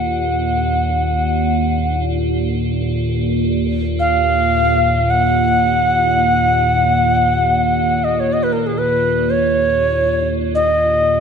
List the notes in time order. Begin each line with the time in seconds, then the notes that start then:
Already playing: D#2 A#2 F#5
4.00 F5
5.10 F#5
8.04 D#5
8.20 C#5
8.33 D#5
8.43 B4
8.53 A#4
8.67 G#4
8.78 B4
9.30 C#5
10.55 D#5